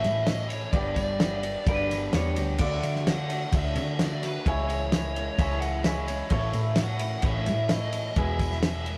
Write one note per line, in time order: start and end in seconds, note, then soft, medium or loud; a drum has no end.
0.00 0.25 A2 medium
0.00 0.28 A2 medium
0.00 0.23 E3 loud
0.00 0.27 E3 medium
0.00 0.28 A3 medium
0.00 0.25 A3 medium
0.00 0.29 C#4 medium
0.00 0.25 C#4 medium
0.00 0.17 E4 medium
0.00 0.28 E4 loud
0.00 0.26 E4 medium
0.00 0.17 A4 medium
0.00 0.17 C#5 medium
0.00 0.23 E5 medium
0.04 0.66 A2 medium
0.04 snare soft
0.04 ride medium
0.04 tambourine medium
0.23 0.71 E3 medium
0.23 0.48 A3 medium
0.23 0.47 C#4 medium
0.23 0.63 E4 medium
0.23 0.63 A4 medium
0.23 0.63 C#5 medium
0.23 0.48 D#5 loud
0.23 snare loud
0.23 ride medium
0.27 0.46 E4 medium
0.27 tambourine medium
0.47 0.71 A3 medium
0.47 0.71 C#4 medium
0.47 0.71 E4 medium
0.47 0.71 C#5 medium
0.47 ride medium
0.51 0.75 A3 soft
0.51 0.75 C#4 soft
0.51 0.74 E4 medium
0.51 tambourine medium
0.72 1.55 G1 loud
0.72 1.20 G2 medium
0.72 1.20 D3 loud
0.72 0.97 G3 medium
0.72 0.97 B3 medium
0.72 0.97 D4 loud
0.72 1.09 G4 loud
0.72 0.96 G4 medium
0.72 1.09 B4 medium
0.72 0.79 D5 medium
0.72 1.10 D5 loud
0.72 kick loud
0.72 ride loud
0.72 tambourine soft
0.95 1.44 G3 medium
0.95 1.44 B3 medium
0.95 1.43 D4 medium
0.95 1.42 G4 medium
0.95 1.85 D5 medium
0.95 kick medium
0.95 ride medium
0.95 tambourine medium
1.20 1.67 G3 medium
1.20 1.67 B3 medium
1.20 1.69 D4 medium
1.20 1.57 G4 medium
1.20 1.68 G4 medium
1.20 1.57 B4 medium
1.20 1.57 E5 medium
1.20 snare loud
1.20 ride medium
1.20 tambourine medium
1.43 1.65 G3 medium
1.43 1.65 B3 medium
1.43 1.66 D4 medium
1.43 1.66 G4 medium
1.43 ride medium
1.43 tambourine soft
1.65 2.08 G1 loud
1.65 2.12 G2 medium
1.65 2.13 D3 medium
1.65 1.90 G3 medium
1.65 1.90 B3 loud
1.65 1.90 D4 medium
1.65 1.89 G4 medium
1.65 2.03 G4 medium
1.65 2.03 B4 medium
1.65 2.13 B4 loud
1.65 2.03 D5 loud
1.65 kick loud
1.65 ride loud
1.65 tambourine medium
1.90 2.10 G3 medium
1.90 2.11 B3 medium
1.90 2.11 D4 medium
1.90 2.12 G4 medium
1.90 snare soft
1.90 ride medium
1.90 tambourine medium
2.11 2.35 E2 medium
2.11 2.36 G3 medium
2.11 2.36 B3 medium
2.11 2.35 D4 medium
2.11 2.50 D4 loud
2.11 2.35 G4 medium
2.11 2.50 G4 medium
2.11 2.50 B4 medium
2.11 2.59 C#5 medium
2.11 snare loud
2.11 ride loud
2.11 tambourine medium
2.36 2.58 D2 medium
2.36 2.58 G3 medium
2.36 2.59 B3 medium
2.36 2.58 D4 medium
2.36 2.58 G4 medium
2.36 ride medium
2.36 tambourine medium
2.58 2.80 D2 medium
2.58 3.06 D3 medium
2.58 2.83 A3 loud
2.58 2.82 D4 medium
2.58 2.81 F#4 medium
2.58 2.96 F#4 loud
2.58 2.97 A4 loud
2.58 2.93 D5 loud
2.58 2.97 D5 loud
2.58 kick loud
2.58 tambourine soft
2.58 crash medium
2.83 3.45 D3 loud
2.83 3.29 A3 medium
2.83 3.28 D4 medium
2.83 3.27 F#4 medium
2.83 ride medium
2.83 tambourine medium
2.96 snare soft
3.06 3.30 D3 medium
3.06 3.30 A3 medium
3.06 3.30 D4 medium
3.06 3.43 F#4 medium
3.06 3.30 F#4 medium
3.06 3.43 A4 medium
3.06 3.43 D5 medium
3.06 3.55 F#5 loud
3.06 snare loud
3.06 ride loud
3.06 tambourine medium
3.28 3.50 A3 medium
3.28 3.51 D4 medium
3.28 3.51 F#4 medium
3.28 ride medium
3.51 3.77 D2 loud
3.51 3.97 D3 medium
3.51 3.75 A3 medium
3.51 3.75 D4 medium
3.51 3.74 F#4 loud
3.51 3.89 F#4 medium
3.51 3.89 A4 medium
3.51 3.89 D5 medium
3.51 kick loud
3.51 ride loud
3.51 tambourine medium
3.56 4.02 E5 medium
3.75 4.37 D3 medium
3.75 3.98 A3 medium
3.75 3.99 D4 medium
3.75 3.99 F#4 medium
3.75 ride medium
3.75 tambourine medium
3.98 4.44 D3 medium
3.98 4.22 A3 medium
3.98 4.21 D4 loud
3.98 4.36 F#4 medium
3.98 4.20 F#4 medium
3.98 4.35 A4 medium
3.98 4.35 D5 medium
3.98 4.25 D5 loud
3.98 snare loud
3.98 ride loud
3.98 tambourine medium
4.21 4.45 A3 medium
4.21 4.45 D4 medium
4.21 4.44 F#4 medium
4.21 4.47 B4 medium
4.21 snare soft
4.21 ride medium
4.21 tambourine medium
4.45 5.28 C#2 loud
4.45 4.92 C#3 medium
4.45 5.37 E3 loud
4.45 4.68 G#3 loud
4.45 4.69 C#4 loud
4.45 4.68 E4 medium
4.45 4.82 E4 loud
4.45 4.83 G#4 loud
4.45 4.68 C#5 medium
4.45 4.83 C#5 loud
4.45 kick loud
4.45 ride medium
4.45 tambourine soft
4.68 5.16 G#3 medium
4.68 5.16 C#4 medium
4.68 5.14 E4 medium
4.68 5.58 C#5 medium
4.68 ride medium
4.68 tambourine medium
4.92 5.16 E3 medium
4.92 5.17 G#3 medium
4.92 5.29 E4 medium
4.92 5.29 G#4 medium
4.92 5.29 C#5 medium
4.92 snare loud
4.92 ride medium
4.92 tambourine medium
4.97 5.18 C#4 medium
4.97 5.17 E4 medium
5.15 5.37 G#3 medium
5.15 5.37 C#4 medium
5.15 5.39 E4 medium
5.15 ride medium
5.20 5.39 G#3 soft
5.20 5.40 C#4 soft
5.37 6.21 C#2 loud
5.37 5.85 C#3 medium
5.37 5.82 E3 medium
5.37 5.62 G#3 medium
5.37 5.61 C#4 loud
5.37 5.61 E4 loud
5.37 5.75 E4 medium
5.37 5.75 G#4 medium
5.37 5.75 C#5 loud
5.37 5.60 E5 medium
5.37 kick loud
5.37 ride loud
5.37 tambourine medium
5.61 5.81 G#3 medium
5.61 5.83 C#4 medium
5.61 5.84 E4 medium
5.61 5.84 F#5 medium
5.61 ride medium
5.61 tambourine medium
5.82 6.29 E3 medium
5.82 6.08 G#3 medium
5.82 6.07 C#4 medium
5.82 6.07 E4 medium
5.82 6.22 G#4 medium
5.82 6.08 E5 medium
5.82 snare loud
5.82 ride medium
5.82 tambourine loud
5.87 6.22 E4 medium
5.87 6.08 E4 medium
5.87 6.22 C#5 loud
6.07 6.30 G#3 medium
6.07 6.29 C#4 medium
6.07 6.31 E4 medium
6.07 6.31 C#5 medium
6.07 ride medium
6.07 tambourine medium
6.30 6.52 A1 loud
6.30 6.77 A2 medium
6.30 7.22 E3 medium
6.30 6.54 A3 loud
6.30 6.53 C#4 loud
6.30 6.54 E4 medium
6.30 6.68 E4 loud
6.30 6.65 A4 loud
6.30 6.68 A4 loud
6.30 6.68 C#5 loud
6.30 kick loud
6.30 ride loud
6.30 tambourine soft
6.35 6.80 C#4 medium
6.53 7.16 A2 loud
6.53 7.00 A3 medium
6.53 6.99 C#4 medium
6.53 6.99 E4 medium
6.53 ride medium
6.53 tambourine medium
6.76 7.02 E3 medium
6.76 7.14 E4 medium
6.76 7.14 A4 medium
6.76 7.14 C#5 medium
6.76 snare loud
6.76 ride loud
6.76 tambourine loud
6.81 7.03 A3 medium
6.81 7.03 C#4 medium
6.81 7.01 E4 medium
6.81 7.25 F#5 loud
6.99 7.22 A3 medium
6.99 7.22 C#4 medium
6.99 7.23 E4 medium
6.99 ride medium
7.22 7.49 A1 loud
7.22 7.70 A2 medium
7.22 7.68 E3 medium
7.22 7.47 A3 loud
7.22 7.47 C#4 medium
7.22 7.60 E4 medium
7.22 7.45 E4 medium
7.22 7.60 A4 medium
7.22 7.61 C#5 medium
7.22 kick loud
7.22 ride loud
7.22 tambourine medium
7.26 7.71 E5 loud
7.46 8.09 A2 medium
7.46 7.68 A3 medium
7.46 7.69 C#4 medium
7.46 7.70 E4 medium
7.46 snare soft
7.46 ride medium
7.46 tambourine medium
7.69 8.15 E3 medium
7.69 7.92 A3 medium
7.69 7.92 C#4 medium
7.69 7.91 E4 medium
7.69 8.07 E4 medium
7.69 8.07 A4 medium
7.69 8.07 C#5 medium
7.69 8.17 D#5 medium
7.69 snare loud
7.69 ride loud
7.69 tambourine loud
7.92 8.16 A3 medium
7.92 8.16 C#4 medium
7.92 8.15 E4 medium
7.92 ride medium
7.92 tambourine medium
7.98 8.19 A3 soft
8.16 8.98 E1 medium
8.16 8.64 E2 medium
8.16 8.64 B2 medium
8.16 8.41 E3 loud
8.16 8.40 G#3 loud
8.16 8.40 B3 loud
8.16 8.54 E4 loud
8.16 8.39 E4 medium
8.16 8.54 G#4 loud
8.16 8.54 B4 loud
8.16 8.65 E5 loud
8.16 kick loud
8.16 ride medium
8.16 tambourine soft
8.39 8.86 E3 medium
8.39 8.86 G#3 medium
8.39 8.85 B3 medium
8.39 8.84 E4 medium
8.39 kick medium
8.39 ride medium
8.39 tambourine medium
8.52 snare soft
8.62 8.98 E3 medium
8.62 8.98 G#3 medium
8.62 8.98 B3 medium
8.62 8.98 E4 medium
8.62 8.98 G#4 medium
8.62 8.98 B4 medium
8.62 snare loud
8.62 ride loud
8.62 tambourine medium
8.66 8.98 E5 medium
8.85 8.98 E3 medium
8.85 8.98 G#3 medium
8.85 8.98 B3 medium
8.85 8.98 E4 medium
8.85 ride medium
8.85 tambourine soft